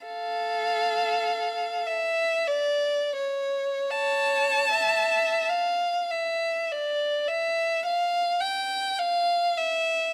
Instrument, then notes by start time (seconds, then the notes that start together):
violin
0.06 A4 F5
1.86 E5
2.48 D5
3.16 C#5
3.90 C#5 A5
4.73 E5
5.50 F5
6.11 E5
6.72 D5
7.28 E5
7.86 F5
8.41 G5
8.99 F5
9.58 E5